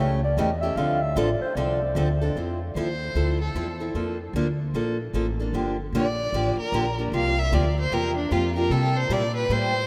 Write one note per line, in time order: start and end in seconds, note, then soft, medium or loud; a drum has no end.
0.00 0.36 C#2 medium
0.00 0.19 C#3 medium
0.00 0.19 E3 medium
0.00 0.19 A3 medium
0.00 0.19 C#4 medium
0.00 0.19 G4 medium
0.00 0.23 C#5 loud
0.24 0.40 D5 loud
0.37 0.75 E2 medium
0.37 0.49 C#3 medium
0.37 0.49 E3 medium
0.37 0.49 A3 loud
0.37 0.49 C#4 medium
0.37 0.49 G4 medium
0.37 0.60 D#5 loud
0.61 0.77 A3 soft
0.61 0.77 C#4 medium
0.61 0.77 G4 medium
0.61 0.79 E5 loud
0.76 1.15 D2 medium
0.76 0.98 D3 medium
0.76 0.98 F3 medium
0.76 0.98 C4 medium
0.76 0.99 D4 medium
0.76 0.99 A4 medium
0.76 1.04 F5 loud
1.02 1.19 E5 loud
1.16 1.39 A1 loud
1.16 1.28 D3 loud
1.16 1.28 F3 loud
1.16 1.28 C4 loud
1.16 1.28 D4 loud
1.16 1.28 A4 loud
1.16 1.41 D5 loud
1.40 1.57 C5 loud
1.40 muted upright bass stroke soft
1.55 1.94 C2 medium
1.55 1.78 D3 medium
1.55 1.78 F3 medium
1.55 1.78 C4 medium
1.55 1.78 D4 medium
1.55 1.78 A4 medium
1.55 2.21 D5 loud
1.95 2.34 D2 loud
1.95 2.07 D3 medium
1.95 2.07 F3 medium
1.95 2.08 C4 medium
1.95 2.08 D4 medium
1.95 2.08 A4 loud
2.21 2.36 C4 medium
2.21 2.36 D4 medium
2.21 2.35 A4 medium
2.35 2.74 F2 medium
2.35 2.57 F3 medium
2.35 2.58 C4 medium
2.35 2.58 E4 medium
2.35 2.58 A4 medium
2.75 3.14 D#2 medium
2.75 2.87 F3 medium
2.75 2.87 C4 medium
2.75 2.88 E4 medium
2.75 2.88 A4 medium
2.75 3.37 C5 medium
3.15 3.54 D2 medium
3.15 3.37 F3 medium
3.15 3.37 C4 medium
3.15 3.37 E4 medium
3.15 3.37 A4 medium
3.41 3.78 A4 medium
3.55 3.93 E2 medium
3.55 3.67 F3 medium
3.55 3.67 C4 medium
3.55 3.67 E4 medium
3.55 3.67 A4 medium
3.80 3.95 C4 soft
3.80 3.95 E4 soft
3.80 3.94 A4 medium
3.94 4.33 F2 medium
3.94 4.16 F3 medium
3.94 4.16 A#3 medium
3.94 4.16 D4 medium
3.94 4.17 A4 medium
4.33 4.72 D2 medium
4.33 4.46 F3 medium
4.33 4.46 A#3 loud
4.33 4.46 D4 medium
4.33 4.47 A4 medium
4.74 5.12 A#1 medium
4.74 4.96 F3 medium
4.74 4.96 A#3 medium
4.74 4.96 D4 medium
4.74 4.96 A4 medium
5.13 5.52 A1 medium
5.13 5.25 F3 medium
5.13 5.26 A#3 medium
5.13 5.26 D4 medium
5.13 5.26 A4 medium
5.40 5.53 A#3 soft
5.40 5.53 D4 medium
5.40 5.53 A4 medium
5.53 5.92 G1 medium
5.53 5.75 D3 medium
5.53 5.75 F3 medium
5.53 5.76 A#3 medium
5.53 5.75 D4 medium
5.53 5.76 G4 medium
5.92 6.31 A#1 medium
5.92 6.05 D3 medium
5.92 6.05 F3 medium
5.92 6.05 A#3 medium
5.92 6.05 D4 medium
5.92 6.06 G4 loud
5.92 6.55 D5 medium
6.32 6.56 A1 medium
6.32 6.55 D3 medium
6.32 6.55 F3 medium
6.32 6.55 A#3 medium
6.32 6.55 D4 medium
6.32 6.55 G4 medium
6.57 6.96 A#4 medium
6.57 muted upright bass stroke soft
6.72 7.11 A#1 loud
6.72 6.84 D3 medium
6.72 6.85 F3 medium
6.72 6.85 A#3 medium
6.72 6.85 D4 medium
6.72 6.85 G4 medium
6.98 7.13 A#3 soft
6.98 7.13 D4 medium
6.98 7.12 G4 medium
7.12 7.51 C2 medium
7.12 7.34 C3 medium
7.12 7.34 F3 medium
7.12 7.34 A#3 medium
7.12 7.34 F4 medium
7.12 7.35 G4 medium
7.12 7.40 F5 medium
7.39 7.56 E5 medium
7.52 7.90 D2 medium
7.52 7.64 C3 medium
7.52 7.64 F3 medium
7.52 7.64 A#3 medium
7.52 7.64 F4 medium
7.52 7.64 G4 medium
7.52 7.78 D5 medium
7.81 7.95 C5 medium
7.91 8.30 E2 medium
7.91 8.13 C3 medium
7.91 8.13 F3 medium
7.91 8.13 A#3 medium
7.91 8.14 F4 medium
7.91 8.14 G4 medium
7.91 8.16 A#4 medium
8.17 8.33 D4 medium
8.31 8.69 F2 loud
8.31 8.43 C3 medium
8.31 8.43 F3 medium
8.31 8.43 A#3 medium
8.31 8.43 F4 medium
8.31 8.56 F4 medium
8.31 8.43 G4 medium
8.56 8.70 A#3 medium
8.56 8.71 F4 medium
8.56 8.71 G4 medium
8.56 8.73 A#4 medium
8.70 9.09 C3 medium
8.70 8.92 C3 medium
8.70 8.93 G3 medium
8.70 8.93 A#3 medium
8.70 8.93 E4 medium
8.70 8.93 G4 medium
8.70 8.98 A4 medium
8.97 9.14 C5 medium
9.09 9.49 A#2 medium
9.09 9.22 C3 medium
9.09 9.22 G3 loud
9.09 9.22 A#3 medium
9.09 9.22 E4 medium
9.09 9.22 G4 medium
9.09 9.36 D5 medium
9.37 9.53 B4 medium
9.49 9.87 A2 medium
9.49 9.72 C3 medium
9.49 9.72 G3 medium
9.49 9.72 A#3 medium
9.49 9.72 E4 medium
9.49 9.72 G4 medium
9.49 9.87 C5 medium